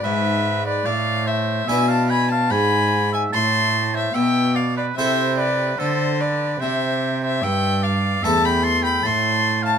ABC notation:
X:1
M:4/4
L:1/16
Q:1/4=73
K:Am
V:1 name="Violin"
e3 d f2 e2 ^g a b a b3 g | c'3 e g2 f d e2 d2 c2 d2 | e3 e g2 f2 a b c' b c'3 a |]
V:2 name="Oboe"
B3 B d2 c2 e f ^g f g3 e | a3 c e2 d B c2 B2 A2 B2 | c3 c e2 d2 e g a g a3 f |]
V:3 name="Harpsichord"
z8 [DEB]8 | z8 [CEA]8 | z8 [A,EA]8 |]
V:4 name="Harpsichord" clef=bass
^G,,4 A,,4 B,,4 G,,4 | A,,4 B,,4 C,4 D,4 | C,4 G,,4 E,,4 A,,4 |]
V:5 name="Cello" clef=bass
^G,,4 A,,4 B,,4 G,,4 | A,,4 B,,4 C,4 D,4 | C,4 G,,4 E,,4 A,,4 |]